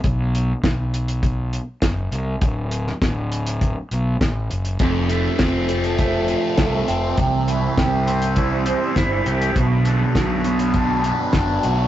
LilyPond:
<<
  \new Staff \with { instrumentName = "Distorted electric guitar" } { \time 4/4 \key b \phrygian \tempo 4 = 101 r1 | r1 | f,8 a8 c'8 f8 a8 f'8 a8 c'8 | c8 e'8 g'8 c'8 e'8 c''8 e'8 g'8 |
b,8 d'8 fis'8 b8 d'8 b'8 d'8 fis'8 | }
  \new Staff \with { instrumentName = "String machine" } { \time 4/4 \key b \phrygian r1 | r1 | <f a c' a'>1 | <g e' c''>1 |
<fis b d' b'>1 | }
  \new Staff \with { instrumentName = "Fingered electric bass" } { \clef bass \time 4/4 \key b \phrygian b,,4 b,,2 fis,,8 c,8 | d,,4 d,,4. b,,8 a,,8 fis,,8 | f,,4 f,,2 c,8 f,,8 | c,4 c,2 g,,8 c,8 |
b,,4 b,,2 fis,,8 b,,8 | }
  \new DrumStaff \with { instrumentName = "Drums" } \drummode { \time 4/4 <hh bd>8 hh8 <hh bd sn>8 hh16 hh16 <hh bd>8 hh8 <hh bd sn>8 hh8 | <hh bd>8 hh16 sn16 <hh bd sn>8 hh16 hh16 <hh bd>8 hh8 <hh bd sn>8 hh16 hh16 | <hh bd>8 hh8 <hh bd sn>8 hh16 hh16 <hh bd>8 hh8 <hh bd sn>8 hh8 | <hh bd>8 hh8 <hh bd sn>8 hh16 hh16 <hh bd>8 hh8 <hh bd sn>8 hh16 hh16 |
<hh bd>8 hh8 <hh bd sn>8 hh16 hh16 <hh bd>8 hh8 <hh bd sn>8 hh8 | }
>>